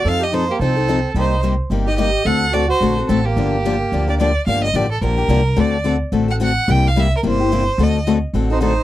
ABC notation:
X:1
M:4/4
L:1/8
Q:"Swing" 1/4=217
K:Gm
V:1 name="Violin"
f e c G A4 | c2 z3 e e2 | ^f2 d c2 z A G- | G4- G d d2 |
f e d A B4 | d2 z3 ^f f2 | g f =e B c4 | e2 z3 c c2 |]
V:2 name="Accordion"
A G E B, C4 | E2 z3 G G2 | A2 ^F F2 z C B,- | B,6 z2 |
z8 | z8 | z8 | z4 z E E2 |]
V:3 name="Steel-string acoustic guitar"
[F,CEA] z [F,CEA] z [F,CEA] [CEA] [F,CEA] z | [C,G,B,EG] z [C,G,B,EG] z [C,G,B,EG] [B,EG] [C,G,B,EG] z | [D,A,C^FA] z [D,A,CFA] z [D,A,CFA] [CFA] [D,A,CFA] z | [D,F,B,DG] z [D,F,B,DG] z [D,F,B,DG] [B,DG] [D,F,B,DG] z |
[D,F,B,DG] z [D,F,B,DG] z [D,F,B,DG] [B,DG] [D,F,B,DG] z | [D,A,C^FA] z [D,A,CFA] z [D,A,CFA] [CFA] [D,A,CFA] z | [C,G,B,=EG] z [C,G,B,EG] z [C,G,B,EG] [B,EG] [C,G,B,EG] z | [D,A,C^FA] z [D,A,CFA] z [D,A,CFA] [CFA] [D,A,CFA] z |]
V:4 name="Upright bass" clef=bass
F,,4 C,,4 | C,,4 G,,,4 | D,,4 B,,,2 A,,,2 | G,,,4 D,,4 |
G,,,2 A,,,2 B,,,2 C,,2 | D,,4 A,,,4 | C,,4 G,,,4 | D,,4 A,,,4 |]